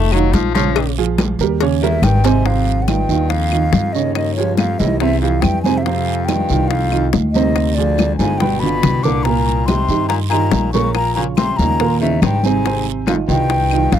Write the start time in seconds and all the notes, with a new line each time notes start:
Already playing: F1 A3
0.12 D#3 F#3 D#4 F4, high conga, claves
0.33 A#1 F3, cowbell, high conga, short guiro
0.54 C#3 F3 C#4 C#5, cowbell, high conga, short guiro
0.76 cowbell, high conga, long guiro, claves
0.97 F3 F4 G#4, high conga
1.18 cowbell, high conga, short guiro, claves
1.39 D#2 G3 G4 A#4, high conga, short guiro
1.60 C#3 C#4 C#5, cowbell, high conga, long guiro
1.82 E2 G3 G4 A#4 E5, high conga
2.02 G#1 G2 G5, cowbell, high conga, short guiro, claves
2.24 G#2 C3 C4 C5 G#5, cowbell, short guiro
2.45 F2 C3 C4 C5 F5, high bongo, high conga, long guiro
2.68 high conga
2.81 F#2 F#5
2.87 G2 D#3 D#4 F4 G5, high bongo, high conga, short guiro, claves
3.09 D#2 D#3 D#4 F4, short guiro
3.29 F2 F5, high bongo, high conga, long guiro
3.52 D#3 D#4 F4, high conga, claves
3.73 G2, high bongo, low bongo, high conga, short guiro
3.93 D#2 C#3 C#4 C#5 D#5, short guiro
4.15 D#2 D#5, high bongo, high conga, long guiro, claves
4.35 C#2 F3 F4 C#5, high bongo, high conga
4.39 G4
4.57 F2 F5, high bongo, high conga, short guiro, claves
4.79 C2 D#2 E3 E4 G4 D#5, high bongo, high conga, short guiro
5.00 E2 C3 C4 C5 E5, high bongo, high conga, long guiro
5.21 F2 E3 E4 G4 F5, high conga
5.41 F2 G2 G5, high bongo, low bongo, high conga, short guiro, claves
5.62 G#2 C3 C4 C5 G#5, high bongo, high conga, short guiro
5.78 E2 E5
5.83 F2 F5, high bongo, high conga, long guiro
5.87 C3 C4 C5
6.08 high conga
6.25 G2 G5, high bongo, high conga, short guiro
6.29 D#3 D#4 F4, claves
6.49 C2 D#3 D#4 F4, short guiro
6.68 F2 F5, high bongo, high conga, long guiro
6.92 D#3 D#4 F4, high conga, claves
7.13 D2, high bongo, low bongo, high conga, short guiro
7.32 D#2 D#5, high conga, short guiro
7.36 C3 C4 C5
7.56 high bongo, high conga, long guiro, claves
7.75 D2 F3 F4 D5, high bongo, high conga
7.79 G#4
7.98 high bongo, high conga, short guiro, claves
8.17 G1 G#2 D3 D4 F4 G#5, high bongo, high conga, short guiro
8.38 G2 B2 B3 B4 G5, high bongo, long guiro
8.42 high conga
8.60 B2 D3 B5, low conga
8.64 D4 F4
8.83 C2, high bongo, low bongo, low conga, short guiro, claves
9.03 A#2 D3 A#3 A#4 D6, high bongo, low conga, short guiro
9.23 A#2 A#3 A#4 A#5, high bongo, high conga, long guiro
9.48 high conga
9.66 C3 D#3 D#4 G4 C6, high bongo, high conga, short guiro, claves
9.89 G2 D#3 D#4 G4, short guiro
10.09 A#2 A#5, high bongo, high conga, long guiro
10.30 A#2 D#3 D#4 G4 A#5, high conga, claves
10.52 A#1, high bongo, low bongo, high conga, short guiro
10.73 A#2 C#3 A#3 A#4 C#6, high conga, short guiro
10.94 A#2 A#5, high bongo, high conga, long guiro, claves
11.15 A#2 C#3 C#4 F4 A#5, high bongo, high conga
11.37 C3 C6, high bongo, high conga, short guiro, claves
11.57 D#2 A#2 A#5, high bongo, high conga, short guiro
11.61 C#3 C#4 D#4
11.80 A#2 A#3 A#4, high bongo, high conga, long guiro
12.00 E2 C#3 C#4 D#4 E5, high conga
12.22 G#1 G2 G5, high bongo, low bongo, high conga, short guiro, claves
12.43 G#2 C3 C4 C5 G#5, high bongo, high conga, short guiro
12.65 C3 C4 C5, high bongo, high conga, long guiro
12.86 high conga
13.06 F2 D#3 D#4 F4 F5, high bongo, high conga, short guiro, claves
13.28 C2 G2 D#3 D#4 F4 G5, short guiro
13.50 high bongo, high conga, long guiro
13.71 D#3 D#4 F4, high conga, claves
13.92 A#1 F2 F5, high bongo, low bongo, high conga, short guiro